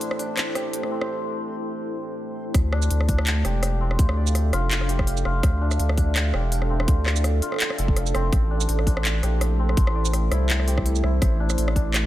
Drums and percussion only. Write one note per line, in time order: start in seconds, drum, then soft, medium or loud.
0.01 closed hi-hat medium
0.11 cross-stick medium
0.19 closed hi-hat medium
0.37 cross-stick medium
0.37 clap loud
0.37 closed hi-hat medium
0.55 cross-stick medium
0.55 closed hi-hat medium
0.73 closed hi-hat medium
0.83 cross-stick medium
1.01 cross-stick medium
2.54 kick loud
2.54 cross-stick medium
2.54 closed hi-hat medium
2.73 cross-stick medium
2.82 shaker medium
2.91 closed hi-hat medium
3.01 cross-stick medium
3.09 kick medium
3.09 closed hi-hat medium
3.19 cross-stick medium
3.27 clap loud
3.27 closed hi-hat medium
3.45 cross-stick medium
3.45 closed hi-hat medium
3.63 cross-stick medium
3.63 closed hi-hat medium
3.91 cross-stick medium
3.99 kick loud
3.99 closed hi-hat medium
4.09 cross-stick medium
4.27 shaker medium
4.35 cross-stick medium
4.35 closed hi-hat medium
4.53 cross-stick medium
4.53 closed hi-hat medium
4.71 clap loud
4.71 closed hi-hat medium
4.81 cross-stick medium
4.89 closed hi-hat medium
4.99 kick medium
4.99 cross-stick medium
5.07 closed hi-hat medium
5.17 shaker soft
5.25 cross-stick medium
5.43 kick loud
5.43 cross-stick medium
5.43 closed hi-hat medium
5.71 cross-stick medium
5.71 shaker medium
5.80 closed hi-hat medium
5.89 cross-stick medium
5.98 kick medium
5.98 closed hi-hat medium
6.16 cross-stick medium
6.16 clap loud
6.16 closed hi-hat medium
6.34 cross-stick medium
6.52 closed hi-hat medium
6.62 cross-stick soft
6.80 cross-stick medium
6.88 kick loud
6.88 closed hi-hat medium
7.06 cross-stick medium
7.06 clap medium
7.16 shaker medium
7.24 cross-stick medium
7.24 closed hi-hat medium
7.42 closed hi-hat medium
7.52 cross-stick soft
7.54 cross-stick soft
7.56 cross-stick soft
7.58 cross-stick soft
7.58 clap loud
7.58 closed hi-hat medium
7.70 cross-stick medium
7.78 closed hi-hat medium
7.88 kick medium
7.97 cross-stick medium
7.97 closed hi-hat medium
8.06 shaker soft
8.15 cross-stick medium
8.15 closed hi-hat soft
8.33 kick loud
8.33 cross-stick medium
8.33 closed hi-hat medium
8.61 shaker medium
8.69 closed hi-hat medium
8.79 cross-stick medium
8.87 kick medium
8.87 closed hi-hat medium
8.97 cross-stick medium
9.05 clap loud
9.05 closed hi-hat medium
9.23 cross-stick medium
9.23 closed hi-hat medium
9.41 cross-stick medium
9.41 closed hi-hat medium
9.69 cross-stick soft
9.77 kick loud
9.77 closed hi-hat medium
9.87 cross-stick medium
10.05 shaker medium
10.13 cross-stick medium
10.13 closed hi-hat medium
10.32 cross-stick medium
10.32 closed hi-hat medium
10.50 clap loud
10.50 closed hi-hat medium
10.60 cross-stick medium
10.68 closed hi-hat medium
10.78 kick medium
10.78 cross-stick medium
10.86 closed hi-hat medium
10.96 shaker soft
11.04 cross-stick medium
11.22 kick loud
11.22 cross-stick medium
11.22 closed hi-hat medium
11.50 cross-stick medium
11.50 shaker medium
11.58 closed hi-hat medium
11.68 cross-stick medium
11.76 kick medium
11.76 closed hi-hat medium
11.94 cross-stick medium
11.94 clap loud
11.94 closed hi-hat medium